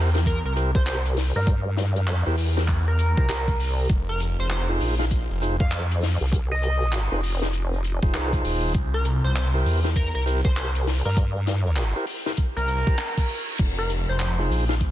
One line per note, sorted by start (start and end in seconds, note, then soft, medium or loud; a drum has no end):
0.00 0.42 E2 loud
0.14 0.20 E4 medium
0.14 0.20 G4 medium
0.14 0.20 A#4 medium
0.14 0.20 C5 loud
0.14 snare medium
0.14 closed hi-hat medium
0.14 shaker soft
0.26 0.38 A#4 medium
0.26 kick medium
0.26 closed hi-hat medium
0.26 shaker medium
0.44 0.72 C2 loud
0.44 0.53 A#4 medium
0.44 shaker soft
0.56 0.71 E4 medium
0.56 0.71 G4 medium
0.56 0.71 A#4 medium
0.56 0.71 C5 medium
0.56 closed hi-hat medium
0.56 shaker medium
0.75 1.33 C2 medium
0.75 0.83 C5 loud
0.75 kick loud
0.75 shaker soft
0.87 0.99 C5 medium
0.87 clap loud
0.87 closed hi-hat medium
0.87 shaker medium
1.06 closed hi-hat medium
1.06 shaker soft
1.17 snare soft
1.17 open hi-hat medium
1.17 shaker loud
1.36 1.98 G2 loud
1.36 1.47 A#4 loud
1.36 shaker soft
1.47 kick loud
1.47 closed hi-hat medium
1.47 shaker medium
1.77 snare soft
1.77 closed hi-hat medium
1.77 shaker loud
1.96 2.24 F#2 loud
1.96 closed hi-hat medium
1.96 shaker soft
2.08 clap loud
2.08 closed hi-hat medium
2.08 shaker medium
2.26 3.15 E2 loud
2.26 2.36 E4 medium
2.26 2.36 G4 medium
2.26 2.36 A#4 medium
2.26 2.36 C5 medium
2.26 shaker soft
2.38 open hi-hat medium
2.38 shaker loud
2.57 2.63 E4 medium
2.57 2.63 G4 medium
2.57 2.63 A#4 medium
2.57 2.63 C5 medium
2.57 snare medium
2.57 closed hi-hat medium
2.57 shaker soft
2.67 kick medium
2.67 clap medium
2.67 closed hi-hat medium
2.67 shaker medium
2.87 3.71 A#4 loud
2.87 shaker soft
2.99 closed hi-hat medium
2.99 shaker medium
3.17 3.27 C2 loud
3.17 3.27 E4 medium
3.17 3.27 G4 medium
3.17 3.27 A#4 medium
3.17 3.27 C5 loud
3.17 kick loud
3.17 shaker soft
3.29 3.88 C2 loud
3.29 clap loud
3.29 closed hi-hat medium
3.29 shaker medium
3.48 kick medium
3.48 closed hi-hat medium
3.48 shaker soft
3.60 open hi-hat medium
3.60 shaker medium
3.79 shaker soft
3.90 4.36 F1 loud
3.90 kick loud
3.90 closed hi-hat medium
3.90 shaker medium
4.09 4.20 A#4 medium
4.20 closed hi-hat medium
4.20 shaker loud
4.39 4.79 F1 loud
4.39 4.47 C5 medium
4.39 shaker soft
4.50 4.63 C5 medium
4.50 clap loud
4.50 closed hi-hat medium
4.50 shaker medium
4.69 4.95 D#4 medium
4.69 4.95 F4 medium
4.69 4.95 G#4 medium
4.69 4.95 C5 medium
4.69 shaker soft
4.81 5.27 A#1 loud
4.81 open hi-hat medium
4.81 shaker medium
4.99 5.05 D#4 medium
4.99 5.05 F4 medium
4.99 5.05 G#4 medium
4.99 5.05 F5 loud
4.99 snare soft
4.99 closed hi-hat medium
4.99 shaker soft
5.11 kick medium
5.11 closed hi-hat medium
5.11 shaker medium
5.30 5.57 F1 loud
5.30 shaker soft
5.41 5.56 D#4 medium
5.41 5.56 F4 medium
5.41 5.56 G#4 medium
5.41 5.56 C5 medium
5.41 closed hi-hat medium
5.41 shaker medium
5.60 6.18 F2 medium
5.60 5.72 F5 medium
5.60 kick loud
5.60 shaker soft
5.72 clap loud
5.72 closed hi-hat medium
5.72 shaker medium
5.91 closed hi-hat medium
5.91 shaker soft
6.02 snare soft
6.02 open hi-hat medium
6.02 shaker medium
6.21 7.09 C2 loud
6.21 shaker soft
6.32 kick loud
6.32 closed hi-hat medium
6.32 shaker soft
6.51 6.93 D#5 medium
6.62 closed hi-hat medium
6.62 shaker medium
6.81 shaker soft
6.93 clap loud
6.93 closed hi-hat medium
6.93 shaker medium
7.12 8.00 F1 loud
7.12 7.21 D#4 medium
7.12 7.21 F4 medium
7.12 7.21 G#4 medium
7.12 7.21 C5 medium
7.12 shaker soft
7.24 open hi-hat medium
7.24 shaker medium
7.42 7.48 D#4 medium
7.42 7.48 F4 medium
7.42 7.48 G#4 medium
7.42 7.48 C5 medium
7.42 snare medium
7.42 closed hi-hat medium
7.42 shaker soft
7.53 closed hi-hat medium
7.53 shaker soft
7.73 shaker soft
7.84 closed hi-hat medium
7.84 shaker medium
8.02 8.12 F1 loud
8.02 8.73 D#4 loud
8.02 8.73 F4 medium
8.02 8.73 G#4 medium
8.02 8.73 C5 loud
8.02 kick loud
8.02 shaker soft
8.14 8.43 C2 loud
8.14 clap loud
8.14 closed hi-hat medium
8.14 shaker soft
8.33 kick medium
8.33 closed hi-hat medium
8.33 shaker soft
8.45 8.73 D#1 loud
8.45 open hi-hat medium
8.45 shaker loud
8.64 shaker soft
8.75 9.21 C2 medium
8.75 kick loud
8.75 closed hi-hat medium
8.75 shaker soft
8.94 9.05 A#4 loud
9.05 closed hi-hat medium
9.05 shaker medium
9.24 9.64 C2 loud
9.24 9.31 C5 medium
9.24 shaker soft
9.35 9.47 C5 medium
9.35 clap loud
9.35 closed hi-hat medium
9.35 shaker medium
9.54 9.80 E4 medium
9.54 9.80 G4 medium
9.54 9.80 A#4 medium
9.54 9.80 C5 medium
9.54 shaker soft
9.66 10.12 E2 loud
9.66 open hi-hat medium
9.66 shaker loud
9.84 9.90 E4 medium
9.84 9.90 G4 medium
9.84 9.90 A#4 medium
9.84 9.90 C5 loud
9.84 snare medium
9.84 closed hi-hat medium
9.84 shaker soft
9.96 10.08 A#4 medium
9.96 kick medium
9.96 closed hi-hat medium
9.96 shaker soft
10.15 10.42 C2 loud
10.15 10.22 A#4 medium
10.15 shaker soft
10.26 10.41 E4 medium
10.26 10.41 G4 medium
10.26 10.41 A#4 medium
10.26 10.41 C5 medium
10.26 closed hi-hat medium
10.26 shaker medium
10.45 11.02 C2 medium
10.45 10.52 C5 medium
10.45 kick loud
10.45 shaker soft
10.57 10.69 C5 medium
10.57 clap loud
10.57 closed hi-hat medium
10.57 shaker soft
10.75 closed hi-hat medium
10.75 shaker soft
10.86 snare soft
10.86 open hi-hat medium
10.86 shaker medium
11.05 11.93 G2 loud
11.05 11.17 A#4 medium
11.05 shaker soft
11.17 kick loud
11.17 closed hi-hat medium
11.17 shaker medium
11.36 shaker soft
11.47 snare soft
11.47 closed hi-hat medium
11.47 shaker medium
11.67 shaker soft
11.76 clap loud
11.76 closed hi-hat medium
11.76 shaker soft
11.96 12.05 E4 medium
11.96 12.05 G4 medium
11.96 12.05 A#4 medium
11.96 12.05 C5 medium
11.96 shaker soft
12.07 open hi-hat medium
12.07 shaker medium
12.26 12.32 E4 medium
12.26 12.32 G4 medium
12.26 12.32 A#4 medium
12.26 12.32 C5 medium
12.26 snare soft
12.26 closed hi-hat medium
12.26 shaker soft
12.37 kick medium
12.37 closed hi-hat medium
12.37 reverse cymbal medium
12.37 shaker medium
12.56 12.84 C2 medium
12.56 13.40 A#4 loud
12.56 closed hi-hat soft
12.56 shaker soft
12.68 closed hi-hat medium
12.68 shaker medium
12.86 12.96 E4 loud
12.86 12.96 G4 medium
12.86 12.96 A#4 medium
12.86 12.96 C5 loud
12.86 kick loud
12.86 shaker soft
12.98 clap loud
12.98 closed hi-hat medium
12.98 shaker medium
13.17 kick medium
13.17 closed hi-hat medium
13.17 shaker soft
13.29 open hi-hat medium
13.29 shaker loud
13.48 shaker soft
13.58 14.05 F1 loud
13.58 kick loud
13.58 closed hi-hat loud
13.58 crash medium
13.58 shaker medium
13.78 13.90 A#4 medium
13.90 closed hi-hat medium
13.90 shaker medium
14.08 14.48 F1 loud
14.08 14.16 C5 medium
14.08 shaker soft
14.20 14.32 C5 medium
14.20 clap loud
14.20 closed hi-hat loud
14.20 shaker medium
14.38 14.64 D#4 medium
14.38 14.64 F4 medium
14.38 14.64 G#4 medium
14.38 14.64 C5 medium
14.38 shaker soft
14.50 14.91 A#1 loud
14.50 open hi-hat medium
14.50 shaker medium
14.69 14.75 D#4 medium
14.69 14.75 F4 medium
14.69 14.75 G#4 medium
14.69 14.75 F5 loud
14.69 snare medium
14.69 closed hi-hat medium
14.69 shaker soft
14.80 kick medium
14.80 closed hi-hat medium
14.80 shaker medium